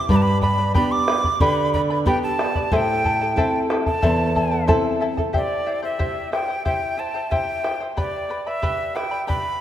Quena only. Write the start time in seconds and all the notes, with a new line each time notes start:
0.10 B5
0.16 A5
0.22 B5
0.42 B5
0.75 B5
0.92 D6
1.41 B5
1.73 B5
2.07 G5
2.23 A5
2.73 G5 G#5
3.88 A5
5.36 D5
5.85 E5
6.33 G5
6.66 G5
6.99 A5
7.32 G5
7.99 D5
8.47 E5
8.96 G5
9.28 B5